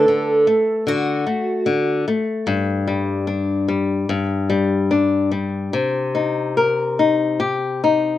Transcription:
0.00 0.89 A4 medium
0.08 0.45 D3 soft
0.47 0.84 A3 medium
0.87 1.24 D3 medium
0.87 2.03 F#4 medium
1.27 1.64 A3 medium
1.66 2.05 D3 medium
2.08 2.46 A3 medium
2.47 4.05 G2 medium
2.87 3.26 G3 soft
3.27 3.66 D4 soft
3.68 4.07 G3 medium
4.09 5.69 G2 medium
4.50 4.89 G3 medium
4.91 5.30 D4 medium
5.32 5.71 G3 soft
5.73 8.18 C3 medium
6.15 6.55 D#4 soft
6.57 6.97 A#4 soft
6.99 7.39 D#4 soft
7.40 7.81 G4 medium
7.84 8.18 D#4 medium

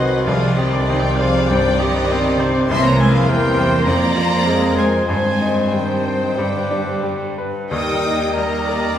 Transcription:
0.00 0.22 C2 medium
0.00 2.66 C2 medium
0.00 0.24 D#3 medium
0.00 2.66 D#3 medium
0.00 0.25 F#3 medium
0.00 0.26 F#3 medium
0.00 0.23 C4 medium
0.00 0.13 D#4 medium
0.00 0.26 F#4 medium
0.00 0.28 F#4 medium
0.00 0.27 B4 medium
0.00 0.23 C5 medium
0.00 0.26 C5 medium
0.00 0.25 D#5 medium
0.00 0.24 F#5 medium
0.00 0.26 F#5 medium
0.00 2.66 C6 medium
0.24 1.47 C2 medium
0.24 0.86 D#3 medium
0.24 0.56 F3 medium
0.24 0.87 G3 medium
0.24 0.86 C4 medium
0.24 2.66 G4 medium
0.24 0.58 G#4 medium
0.24 0.86 C5 medium
0.24 2.66 D5 medium
0.24 0.55 F5 medium
0.24 0.60 F5 medium
0.55 0.72 D#3 medium
0.55 1.07 G4 medium
0.55 0.73 G4 medium
0.55 0.71 D#5 medium
0.71 0.87 D3 medium
0.71 0.89 F4 medium
0.71 0.90 D5 medium
0.71 0.88 D5 medium
0.86 1.03 D#3 medium
0.86 1.49 D#3 medium
0.86 1.49 G3 medium
0.86 1.47 C4 medium
0.86 1.47 C5 medium
0.86 1.02 D#5 medium
0.86 1.01 D#5 medium
0.90 1.39 C4 medium
0.90 1.04 G4 medium
1.00 1.19 G3 medium
1.00 1.18 G5 medium
1.06 1.20 A#4 medium
1.16 1.50 F3 medium
1.16 1.50 G#4 medium
1.16 1.48 F5 medium
1.16 1.49 F5 loud
1.21 1.69 C5 medium
1.46 1.99 G2 medium
1.46 2.68 D#3 medium
1.46 2.68 G3 medium
1.46 1.81 G3 medium
1.46 2.67 C4 medium
1.46 2.67 C5 medium
1.46 1.78 G5 medium
1.46 1.79 G5 loud
1.51 1.81 C5 medium
1.79 2.40 D#3 medium
1.79 2.28 G4 medium
1.79 2.41 G4 medium
1.79 2.41 D#5 medium
1.79 2.40 D#5 loud
2.12 2.59 C4 medium
2.39 2.70 C3 medium
2.39 2.70 D#4 medium
2.39 2.71 C5 medium
2.39 2.70 C5 medium
2.68 3.25 C2 medium
2.68 3.84 C2 medium
2.68 3.88 E3 medium
2.68 3.25 E3 medium
2.68 3.26 A#3 medium
2.68 2.84 C4 medium
2.68 3.25 C4 medium
2.68 4.17 A#4 medium
2.68 3.27 C5 medium
2.68 3.25 C5 medium
2.68 2.84 E5 loud
2.68 2.83 C6 loud
2.68 2.84 C6 medium
2.68 6.05 C6 medium
2.82 2.99 A#3 medium
2.82 2.99 C#5 medium
2.82 3.01 A#5 medium
2.82 2.99 A#5 loud
2.98 3.14 G#3 medium
2.98 3.47 E4 medium
2.98 3.14 C5 medium
2.98 3.14 G#5 loud
2.98 3.13 G#5 medium
3.12 3.29 F3 medium
3.12 3.29 G#4 medium
3.12 3.28 F5 loud
3.12 3.30 F5 medium
3.27 3.87 E2 medium
3.27 3.86 E3 medium
3.27 3.86 G3 medium
3.27 3.86 A#3 medium
3.27 3.76 A#3 medium
3.27 3.87 C4 medium
3.27 3.58 A#4 medium
3.27 3.88 A#4 medium
3.27 3.87 C5 medium
3.27 3.86 G5 loud
3.27 3.85 G5 medium
3.58 3.87 C5 medium
3.58 3.88 C5 medium
3.84 5.08 F2 medium
3.84 5.05 F2 medium
3.84 5.44 F3 medium
3.84 4.91 F3 medium
3.84 4.91 G#3 medium
3.84 4.75 A#3 medium
3.84 4.17 D5 medium
3.84 4.77 D5 medium
3.84 4.77 A#5 loud
3.84 4.75 A#5 loud
3.89 4.93 C4 medium
3.89 4.93 C5 medium
4.16 4.65 F4 medium
4.16 4.46 C5 medium
4.46 4.96 G#3 medium
4.46 5.09 G#4 medium
4.46 5.08 A#4 medium
4.76 5.06 G#3 medium
4.76 5.07 C5 medium
4.76 5.09 C5 medium
4.76 5.08 G#5 medium
4.76 5.06 G#5 medium
5.06 6.36 G2 medium
5.06 6.34 G2 medium
5.06 5.70 D#3 medium
5.06 5.71 G3 medium
5.06 5.71 G#3 medium
5.06 5.72 C4 medium
5.06 7.33 C5 medium
5.06 6.40 C5 medium
5.06 5.72 C5 medium
5.06 5.71 C5 medium
5.06 5.71 G#5 medium
5.06 5.49 G#5 medium
5.41 5.93 D#4 medium
5.71 6.36 D#3 medium
5.71 6.39 D#3 medium
5.71 6.36 G3 medium
5.71 7.37 G3 medium
5.71 6.25 G3 medium
5.71 6.37 C4 medium
5.71 6.37 C5 medium
5.71 7.36 C5 medium
5.71 7.33 G5 medium
5.71 7.38 G5 medium
6.06 6.38 C5 medium
6.37 7.67 G2 medium
6.37 7.48 G2 medium
6.37 7.38 D3 medium
6.37 7.35 G3 medium
6.37 7.37 G3 medium
6.37 7.38 B3 medium
6.37 7.35 G4 medium
6.37 7.38 B4 medium
6.37 7.34 D6 medium
6.71 7.24 D4 medium
7.03 7.57 G3 medium
7.38 7.71 B4 medium
7.69 8.98 D#2 medium
7.69 8.94 D#2 medium
7.69 8.98 D#3 medium
7.69 8.31 G3 medium
7.69 8.98 G3 medium
7.69 8.92 A#3 medium
7.69 8.31 D#4 medium
7.69 8.98 G4 medium
7.69 8.31 G4 medium
7.69 8.31 A#4 medium
7.69 8.31 G5 medium
7.69 8.31 D#6 medium
8.05 8.55 D#4 medium
8.33 8.96 G3 medium
8.33 8.86 G3 medium
8.33 8.97 A#3 medium
8.33 8.66 A#4 medium
8.33 8.98 A#4 medium
8.33 8.96 D#5 medium
8.33 8.98 A#5 medium
8.33 8.97 D#6 medium
8.66 8.98 A#4 medium
8.66 8.97 D5 medium

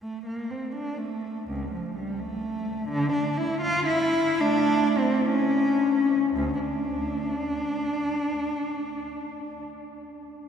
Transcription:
0.02 0.25 A3 medium
0.26 0.50 A#3 medium
0.50 0.75 C4 medium
0.75 0.99 D4 medium
0.98 1.49 A3 medium
1.49 1.73 C#2 medium
1.72 1.96 F3 medium
1.96 2.19 G3 medium
2.19 2.90 A3 medium
2.89 3.12 D3 loud
3.12 3.37 D4 medium
3.37 3.62 E4 medium
3.61 3.87 F4 loud
3.86 4.39 E4 loud
4.40 4.94 A3 medium
4.40 4.99 D4 loud
4.98 5.29 C4 loud
5.28 6.32 C#4 loud
6.35 6.59 D2 medium
6.59 7.95 A3 medium
6.59 9.67 D4 medium

